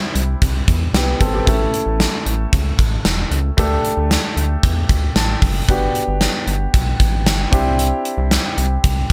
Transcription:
Already playing: grand piano G3 C4 D4 E4
0.15 analog synth bass C2, closed hi-hat
0.42 analog synth bass C2, kick, closed hi-hat
0.68 analog synth bass E2, kick, closed hi-hat
0.94 analog synth bass C2, grand piano B3 G4, snare, closed hi-hat
1.21 analog synth bass G#1, grand piano C4 A4, kick, closed hi-hat
1.34 grand piano B3 G4
1.46 analog synth bass A1, grand piano A3 C#4 E4 A4, kick, closed hi-hat
1.74 closed hi-hat
1.86 analog synth bass A1
2.00 snare, closed hi-hat
2.26 analog synth bass A1, closed hi-hat
2.53 analog synth bass C#2, kick, closed hi-hat
2.79 analog synth bass A1, kick, closed hi-hat
3.05 analog synth bass E1, snare, closed hi-hat
3.31 analog synth bass C#2, closed hi-hat
3.57 analog synth bass D2, grand piano A3 D4 G4 A4, kick, closed hi-hat
3.85 closed hi-hat
3.97 analog synth bass D2
4.11 snare, closed hi-hat
4.37 analog synth bass D2, closed hi-hat
4.63 analog synth bass E2, kick, closed hi-hat
4.89 analog synth bass D2, kick, closed hi-hat
5.15 analog synth bass A1, grand piano A5, snare, closed hi-hat
5.42 analog synth bass F#1, kick, open hi-hat
5.68 analog synth bass G1, grand piano B3 D4 F#4 G4, kick, closed hi-hat
5.95 closed hi-hat
6.08 analog synth bass G1
6.21 snare, closed hi-hat
6.47 analog synth bass G1, closed hi-hat
6.74 analog synth bass B1, kick, closed hi-hat
7.00 analog synth bass A1, kick, closed hi-hat
7.26 analog synth bass G1, snare, closed hi-hat
7.51 analog synth bass C2, grand piano C4 D4 E4 G4, kick, closed hi-hat
7.79 closed hi-hat
8.05 closed hi-hat
8.18 analog synth bass C2
8.31 snare, closed hi-hat
8.58 analog synth bass C2, closed hi-hat
8.84 analog synth bass C2, kick, closed hi-hat

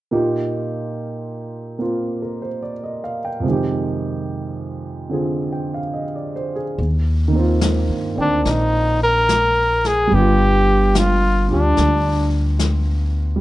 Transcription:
0.11 grand piano A#2 A#3 D#4 F4 G4
1.79 grand piano A#3 C4 F4
2.22 grand piano A#4
2.42 grand piano C5
2.63 grand piano D5
2.84 grand piano D#5
3.04 grand piano F5
3.25 grand piano G5
3.40 grand piano F2 C3
3.46 grand piano D#3 G#3
3.51 grand piano G4
5.10 grand piano D3 C4 F4 G#4
5.53 grand piano G5
5.74 grand piano F5
5.94 grand piano D#5
6.16 grand piano D5
6.36 grand piano C5
6.56 grand piano G#4
6.78 upright bass D#2, brush sweep
7.28 grand piano D#3
7.32 grand piano A#3 C4
7.39 grand piano F4
7.61 snare, hi-hat pedal
7.89 upright bass G2
8.16 upright bass D2, grand piano C4 D5 G5
8.21 flugelhorn D4
8.44 upright bass A#1, flugelhorn D4 D#4, brush sweep, snare
9.03 flugelhorn A#4
9.29 snare, hi-hat pedal
9.85 flugelhorn G#4, snare
10.07 grand piano G3
10.11 upright bass G1, grand piano B3 D4, flugelhorn G4, brush sweep
10.19 grand piano F4
10.95 flugelhorn F4, snare, hi-hat pedal
11.48 upright bass D2, grand piano D4 F4 G4
11.53 flugelhorn D4
11.77 upright bass D2, brush sweep, snare
12.59 snare, hi-hat pedal
13.36 grand piano G3

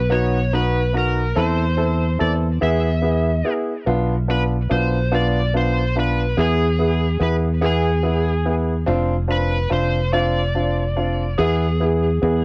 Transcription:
Already playing: fingered electric bass B1, electric slide guitar B4
0.10 grand piano B3 D#4 F#4, electric slide guitar C#5
0.53 grand piano B3 D#4 F#4, electric slide guitar B4
0.93 grand piano B3 D#4 F#4
0.98 electric slide guitar A#4
1.36 fingered electric bass E2, grand piano C4 E4 A4, electric slide guitar C5
1.77 grand piano C4 E4 A4
2.19 fingered electric bass E2, grand piano C4 E4 A4, electric slide guitar D5
2.61 fingered electric bass E2, grand piano B3 E4 G#4, electric slide guitar E5
3.02 grand piano B3 E4 G#4
3.44 grand piano B3 E4 G#4
3.86 fingered electric bass B1, grand piano B3 D4 F4
4.28 grand piano B3 D4 F4, electric slide guitar B4
4.69 fingered electric bass B1, grand piano B3 D4 F4, electric slide guitar C5
5.12 grand piano B3 D4 F4, electric slide guitar D5
5.54 grand piano B3 D4 F4, electric slide guitar C5
5.96 grand piano B3 D4 F4, electric slide guitar B4
6.37 fingered electric bass E2, grand piano B3 E4 G#4, electric slide guitar G#4
6.79 grand piano B3 E4 G#4
7.20 fingered electric bass E2, grand piano B3 E4 G#4, electric slide guitar B4
7.61 grand piano B3 E4 G#4
7.66 electric slide guitar G#4
8.03 grand piano B3 E4 G#4
8.46 grand piano B3 E4 G#4
8.86 fingered electric bass F1, grand piano C4 D4 F4
9.28 grand piano C4 D4 F4, electric slide guitar B4
9.70 fingered electric bass F1, grand piano C4 D4 F4, electric slide guitar C5
10.13 grand piano C4 D4 F4, electric slide guitar D5
10.55 grand piano C4 D4 F4
10.96 grand piano C4 D4 F4
11.38 fingered electric bass E2, grand piano B3 E4 G#4, electric slide guitar G#4
11.80 grand piano B3 E4 G#4
12.22 fingered electric bass E2, grand piano B3 E4 G#4

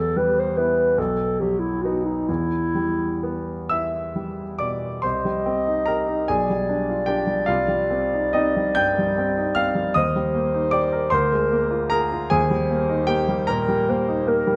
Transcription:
Already playing: grand piano E2
0.00 clarinet A4
0.17 grand piano G3, clarinet B4
0.39 clarinet C5
0.57 grand piano B3 E4, clarinet B4
0.98 grand piano B1, clarinet A4
1.40 grand piano F#3, clarinet G4
1.59 clarinet E4
1.82 grand piano B3 D#4, clarinet F#4
2.05 clarinet D#4
2.28 grand piano E2, clarinet E4
2.75 grand piano G3
3.23 grand piano B3
3.69 grand piano E4 E5 E6
4.16 grand piano G3
4.59 grand piano B2 D5 D6
5.02 grand piano C2 C5 C6, clarinet D#5
5.25 grand piano G3
5.46 grand piano C4
5.67 grand piano D#4
5.86 grand piano G4 A#4 A#5
6.08 grand piano D#4
6.28 grand piano B1 G#4 G#5, clarinet D5
6.50 grand piano G3
6.69 grand piano D4
6.90 grand piano F4
7.06 grand piano D4 G4 G5
7.27 grand piano G3
7.46 grand piano C2 F4 F5
7.68 grand piano G3
7.90 grand piano C4
8.13 grand piano D#4
8.33 grand piano C4 D#4 D#5
8.56 grand piano G3
8.75 grand piano G2 G5 G6
8.99 grand piano G3
9.18 grand piano C4
9.38 grand piano D#4
9.55 grand piano C4 F5 F6
9.75 grand piano G3
9.94 grand piano D#2 D#5 D#6, clarinet C5
10.16 grand piano G3
10.35 grand piano A#3
10.54 grand piano D#4
10.71 grand piano G4 D5 D6
10.92 grand piano A#4
11.10 grand piano D2 C5 C6, clarinet A#4
11.32 grand piano G#3
11.52 grand piano A#3
11.71 grand piano F4
11.90 grand piano G#4 A#4 A#5
12.12 grand piano F4
12.30 grand piano D#2 G#4 G#5, clarinet C5
12.50 grand piano G3
12.71 grand piano A#3
12.89 grand piano D#4
13.07 grand piano A#3 G4 G5
13.28 grand piano G3
13.47 grand piano A#2 A#4 A#5, clarinet A#4
13.69 grand piano G3
13.89 grand piano A#3, clarinet C5
14.08 grand piano D#4
14.27 grand piano A#3, clarinet A#4
14.47 grand piano G3

